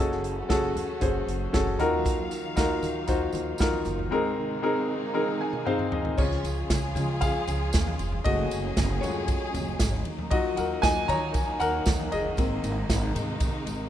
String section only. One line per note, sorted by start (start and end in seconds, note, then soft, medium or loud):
0.00 1.76 C#3 medium
0.00 4.08 F#3 medium
0.00 1.77 A3 medium
0.00 1.77 F#4 medium
1.79 6.14 D#3 medium
1.79 4.09 A#3 medium
1.79 4.09 F5 medium
4.11 6.16 C3 medium
4.11 6.16 G#3 medium
4.11 6.16 A#3 medium
4.11 6.16 D#4 medium
6.18 8.23 C#3 medium
6.18 8.23 F3 medium
6.18 8.23 F4 medium
6.18 8.23 G#4 loud
8.25 10.04 C#3 medium
8.25 12.34 F#3 medium
8.25 10.04 C#4 medium
8.25 10.04 G#4 loud
10.06 13.89 D#3 medium
10.06 13.89 A#3 medium
10.06 12.36 D#4 medium
12.38 13.89 C3 medium
12.38 13.89 G#3 medium
12.38 13.89 D#4 medium